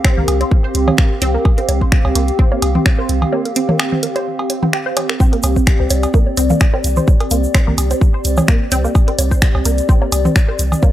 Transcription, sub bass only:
0.17 C2
0.28 C2
0.75 C2
1.22 C2
1.69 C2
2.05 C2
2.15 C2
2.62 C2
3.09 C2
5.44 C2
5.80 C2
5.90 C2
6.37 C2
6.84 C2
7.31 C2
7.67 C2
7.78 C2
8.25 C2
8.72 C2
9.19 C2
9.55 C2
9.65 C2
10.12 C2
10.59 C2

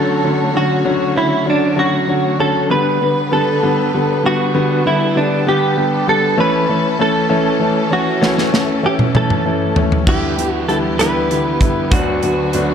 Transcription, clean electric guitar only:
Already playing: A4
0.57 F#4
1.17 E4
1.50 D4
1.79 F#4
2.40 A4
2.71 B4
3.33 A4
4.26 F#4
4.87 E4
5.17 D4
5.49 G4
6.09 A4
6.40 B4
7.01 A4
7.93 F#4
8.86 G4
9.16 A4
10.09 G4
10.50 F#4
10.69 A4
10.99 B4
11.92 F#4

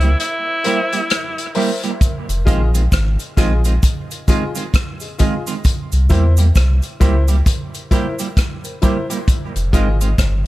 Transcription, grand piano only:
0.01 C5 E5
0.47 C5 E5
0.64 A#4 C5 E5
1.55 A#4 C5 E5
2.45 F4 G#4 D#5
3.37 F4 G#4 D#5
4.28 F4 G#4 D#5
5.01 G#4 D#5
5.18 F4 G#4 D#5
6.09 E4 A#4 C5
7.00 E4 A#4 C5
7.91 E4 A#4 C5
8.64 A#4 C5
8.82 E4 A#4 C5
9.72 F4 G#4 D#5

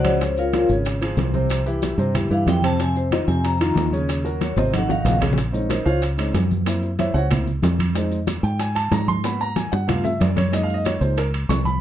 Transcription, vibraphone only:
Already playing: F#4 C5 D5 F#5
0.39 F4 A#4 C#5 F5
2.33 F5
2.49 G5
2.65 A5
2.81 G#5
2.97 C5
3.13 D#5
3.28 G#5
3.44 A#5
4.43 C#5
4.58 D#5
4.75 F#5
4.91 F5

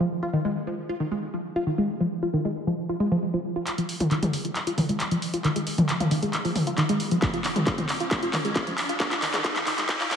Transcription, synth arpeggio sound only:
0.00 F3
0.23 F4
0.33 D#3
0.45 G#3
0.67 F3
0.89 F4
1.00 D#3
1.12 G#3
1.34 F3
1.56 F4
1.67 D#3
1.78 G#3
2.00 F3
2.23 F4
2.33 D#3
2.45 G#3
2.67 F3
2.89 F4
3.00 G#3
3.12 F3
3.34 F3
3.56 F4
3.78 F3
4.00 F4
4.11 D#3
4.23 G#3
4.45 F3
4.67 F4
4.78 D#3
4.89 G#3
5.12 F3
5.34 F4
5.45 D#3
5.56 G#3
5.78 F3
6.00 F4
6.11 D#3
6.23 G#3
6.45 F3
6.67 F4
6.78 D#3
6.89 G#3
7.12 F3
7.34 F4
7.45 D#3
7.56 G#3
7.78 F3
8.00 F4
8.23 F4
8.33 D#3
8.45 G#3
8.67 F3
8.89 F4
9.11 F4
9.22 D#3
9.34 G#3
9.56 F4
9.67 D#3
9.78 G#3
10.00 F4

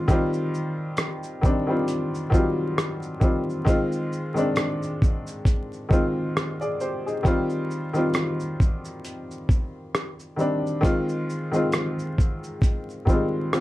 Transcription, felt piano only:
Already playing: D#3 G#3 C4 F4
0.08 D#3 G3 C4
0.12 F4
1.41 D#3 G3 C4
1.46 D4
1.67 D#3 G3 C4 F4
2.30 D#3 F#3 C4 F4
2.38 G3
3.20 D#3 G3 C4 F4
3.65 D#3 G#3 C4
3.69 F4
4.34 D#3 G#3 C4 D4
5.89 D#3 G#3 C4
5.93 F4
6.61 G#4 D5
6.81 G4 C5
7.06 D#4 G#4
7.23 D#3 G3 C4
7.27 F4
7.93 D#3 G3 C4 F4
10.36 D#3 G3 C4
10.40 D4
10.81 D#3 G#3 C4 F4
11.51 D#3 G#3 C4
11.56 F4
13.05 D#3 G3 C4
13.09 G#3 F4
13.53 C4 F4

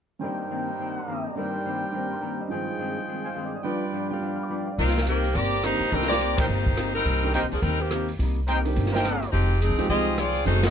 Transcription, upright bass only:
4.79 C2
5.35 G1
5.80 muted upright bass stroke
5.92 C2
6.48 G1
7.05 C2
7.43 D#2
7.52 C#2
7.62 D#2
8.19 C2
8.76 G1
9.33 F1
9.69 C2
9.79 D#2
9.89 C2
10.46 F#1

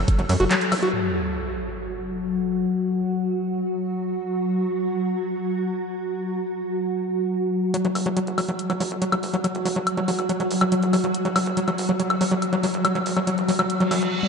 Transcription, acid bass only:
0.19 F#3
0.29 F#3
0.40 F#4
0.51 F#3
0.72 F#3
0.83 F#4
7.74 F#3
7.85 F#3
8.06 F#3
8.17 F#3
8.38 F#3
8.48 F#3
8.70 F#3
8.80 F#3
9.02 F#3
9.12 F#3
9.34 F#3
9.44 F#3
9.65 F#3
9.76 F#3
9.97 F#3
10.08 F#3
10.29 F#3
10.40 F#3
10.61 F#3
10.72 F#3
10.93 F#3
11.04 F#3
11.25 F#3
11.36 F#3
11.57 F#3
11.68 F#3
11.89 F#3
12.00 F#3
12.21 F#3
12.31 F#3
12.53 F#3
12.63 F#3
12.85 F#3
12.95 F#3
13.17 F#3
13.27 F#3
13.48 F#3
13.59 F#3
13.80 F#3
13.91 F#3

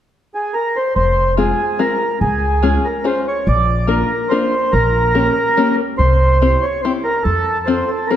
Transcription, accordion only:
0.35 G#4
0.54 A#4
0.76 C5
0.95 C5
1.39 G#4
1.80 A#4
2.21 G#4
2.85 A#4
3.05 C5
3.28 C#5
3.47 D5
3.89 A#4
4.29 C5
4.72 A#4
5.98 C5
6.62 C#5
6.82 C5
7.04 A#4
7.23 A4
7.66 C5
7.88 A4
8.07 A#4

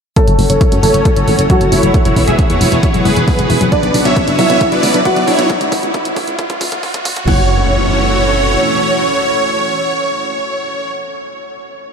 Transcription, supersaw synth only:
0.16 A4 C#5
0.50 A4 C#5
0.83 A4 C#5
1.16 A4 C#5
1.50 A4 C#5
1.72 E4 C#5
2.05 E4 C#5
2.28 G#4 E5
2.50 E4 C#5
2.83 E4 C#5
3.05 G#4 B4
3.28 G#4 B4
3.72 B4 D5
4.05 C#5 E5
4.39 C#5 E5
4.72 B4 D5
5.05 B4 D5
5.28 E4 C#5
7.28 C#5

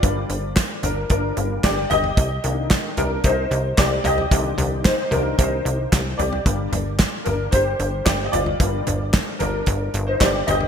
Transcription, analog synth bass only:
0.03 G1
0.30 G1
0.83 G1
1.10 G1
1.37 G1
1.64 G1
1.91 G1
2.17 C2
2.44 C2
2.98 C2
3.24 C2
3.51 C2
3.78 C2
4.04 C2
4.31 C2
4.58 C2
5.11 C2
5.39 C2
5.65 C2
5.93 C2
6.19 C2
6.46 G1
6.72 G1
7.26 G1
7.53 G1
7.80 G1
8.07 G1
8.34 G1
8.60 G1
8.87 G1
9.41 G1
9.67 G1
9.94 G1
10.21 G1
10.48 G1

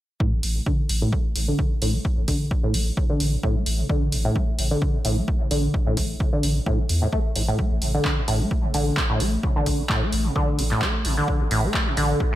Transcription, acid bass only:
0.20 A2
0.33 A3
0.56 C3
0.66 D3
0.90 B2
1.02 A2
1.13 A3
1.36 C3
1.48 D3
1.71 B2
1.82 A2
1.94 A3
2.17 C3
2.28 D3
2.51 B2
2.63 A2
2.74 A3
2.97 C3
3.10 D3
3.33 B2
3.43 A2
3.56 A3
3.79 C3
3.89 D3
4.12 B2
4.25 A2
4.36 A3
4.59 C3
4.71 D3
4.94 B2
5.05 A2
5.17 A3
5.40 C3
5.51 D3
5.74 B2
5.87 A2
5.97 A3
6.20 C3
6.33 D3
6.56 B2
6.66 A2
6.79 A3
7.02 A2
7.13 A3
7.36 A2
7.48 A2
7.59 A3
7.82 C3
7.94 D3
8.17 B2
8.28 A2
8.40 A3
8.64 C3
8.74 D3
8.97 B2
9.10 A2
9.20 A3
9.44 C3
9.56 D3
9.79 B2
9.90 A2
10.02 A3
10.25 C3
10.36 D3
10.59 B2
10.71 A2
10.82 A3
11.05 C3
11.17 D3
11.40 B2
11.51 A2
11.63 A3
11.87 C3
11.97 D3
12.20 B2

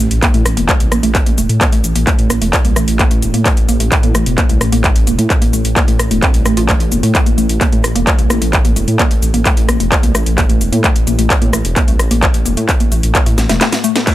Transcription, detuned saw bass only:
0.11 A1
0.34 A2
0.46 A1
0.57 E1
0.80 C2
0.92 A1
1.03 A1
1.26 A1
1.38 E1
1.49 A2
1.84 A1
1.96 A1
2.19 A2
2.30 A1
2.42 E1
2.65 C2
2.76 A1
2.88 A1
3.11 A1
3.23 E1
3.34 A2
3.69 A1
3.80 A1
4.03 A2
4.15 A1
4.26 E1
4.49 C2
4.61 A1
4.73 A1
4.96 A1
5.07 E1
5.19 A2
5.53 A1
5.65 A1
5.88 A2
5.99 A1
6.11 E1
6.34 C2
6.46 A1
6.57 A1
6.80 A1
6.92 E1
7.03 A2
7.38 A1
7.49 A1
7.72 A2
7.84 A1
7.95 E1
8.19 C2
8.30 A1
8.42 A1
8.65 A1
8.76 E1
8.88 A2
9.22 A1
9.34 A1
9.57 A2
9.69 A1
9.80 E1
10.03 C2
10.15 A1
10.26 A1
10.49 A1
10.61 E1
10.72 A2
11.07 A1
11.19 A1
11.42 A2
11.53 A1
11.65 E1
11.88 C2
11.99 A1
12.11 A1
12.34 A1
12.45 E1
12.57 A2
12.92 A1
13.03 A1
13.26 A2
13.38 A1
13.49 E1

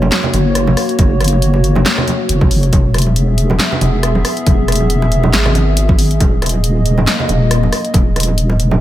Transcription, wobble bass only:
Already playing: F#1
0.33 F#1
0.99 F#1
2.29 F#1
2.73 E1
3.81 E1
4.47 E1
5.33 G#1
6.20 D#1
7.29 D#1
7.94 D#1

